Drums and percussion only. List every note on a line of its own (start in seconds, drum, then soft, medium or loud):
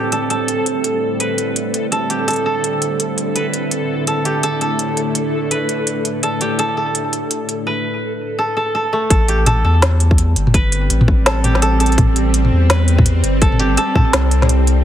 0.12 closed hi-hat medium
0.30 closed hi-hat medium
0.48 closed hi-hat medium
0.66 closed hi-hat medium
0.84 closed hi-hat medium
1.20 closed hi-hat medium
1.38 closed hi-hat medium
1.56 closed hi-hat medium
1.74 closed hi-hat medium
1.92 closed hi-hat medium
2.10 closed hi-hat medium
2.28 closed hi-hat medium
2.31 closed hi-hat medium
2.33 closed hi-hat soft
2.36 closed hi-hat soft
2.64 closed hi-hat medium
2.82 closed hi-hat medium
3.00 closed hi-hat medium
3.18 closed hi-hat medium
3.36 closed hi-hat medium
3.54 closed hi-hat medium
3.71 closed hi-hat medium
4.07 closed hi-hat medium
4.25 closed hi-hat medium
4.43 closed hi-hat medium
4.61 closed hi-hat medium
4.79 closed hi-hat medium
4.97 closed hi-hat medium
5.15 closed hi-hat medium
5.51 closed hi-hat medium
5.69 closed hi-hat medium
5.87 closed hi-hat medium
6.05 closed hi-hat medium
6.23 closed hi-hat medium
6.41 closed hi-hat medium
6.59 closed hi-hat medium
6.95 closed hi-hat medium
7.13 closed hi-hat medium
7.31 closed hi-hat medium
7.49 closed hi-hat medium
9.10 kick loud
9.10 closed hi-hat medium
9.28 closed hi-hat medium
9.46 closed hi-hat medium
9.46 mid tom medium
9.82 snare loud
9.82 closed hi-hat medium
10.00 closed hi-hat medium
10.11 kick loud
10.18 closed hi-hat medium
10.36 closed hi-hat medium
10.47 mid tom medium
10.54 kick loud
10.54 closed hi-hat medium
10.72 closed hi-hat medium
10.90 closed hi-hat medium
11.01 mid tom medium
11.08 kick loud
11.26 snare loud
11.26 closed hi-hat medium
11.44 closed hi-hat medium
11.44 mid tom medium
11.55 snare soft
11.62 closed hi-hat medium
11.80 closed hi-hat medium
11.86 closed hi-hat soft
11.92 closed hi-hat soft
11.98 kick loud
11.98 closed hi-hat medium
11.98 mid tom medium
12.16 closed hi-hat medium
12.34 closed hi-hat medium
12.45 mid tom soft
12.70 snare loud
12.70 closed hi-hat medium
12.88 closed hi-hat medium
12.99 kick loud
12.99 mid tom medium
13.06 closed hi-hat medium
13.24 closed hi-hat medium
13.42 kick loud
13.42 closed hi-hat medium
13.52 mid tom soft
13.60 closed hi-hat medium
13.77 closed hi-hat medium
13.95 kick loud
13.95 mid tom medium
14.13 snare loud
14.13 closed hi-hat medium
14.31 closed hi-hat medium
14.42 snare soft
14.42 mid tom medium
14.49 closed hi-hat medium
14.67 closed hi-hat medium